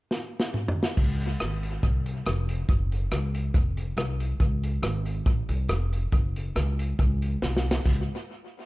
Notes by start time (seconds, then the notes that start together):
0.11 snare
0.40 snare
0.54 mid tom
0.68 floor tom
0.83 snare
0.97 C#2, kick, crash
1.21 closed hi-hat
1.40 G#1, cross-stick, closed hi-hat
1.63 closed hi-hat
1.83 C2, kick, closed hi-hat
2.06 closed hi-hat
2.26 F1, cross-stick, closed hi-hat
2.49 closed hi-hat
2.69 F#1, kick, closed hi-hat
2.92 closed hi-hat
3.11 C#2, cross-stick, closed hi-hat
3.35 closed hi-hat
3.54 F1, kick, closed hi-hat
3.77 closed hi-hat
3.97 C2, cross-stick, closed hi-hat
4.20 closed hi-hat
4.40 C#2, kick, closed hi-hat
4.64 closed hi-hat
4.82 G#1, cross-stick, closed hi-hat
5.06 closed hi-hat
5.26 A#1, kick, closed hi-hat
5.49 C2, closed hi-hat
5.68 F1, cross-stick, closed hi-hat
5.93 closed hi-hat
6.12 F#1, kick, closed hi-hat
6.36 closed hi-hat
6.56 C#2, cross-stick, closed hi-hat
6.79 closed hi-hat
6.99 C#2, kick, closed hi-hat
7.22 closed hi-hat
7.42 C2, snare
7.57 snare
7.71 snare
7.85 C#2, kick, crash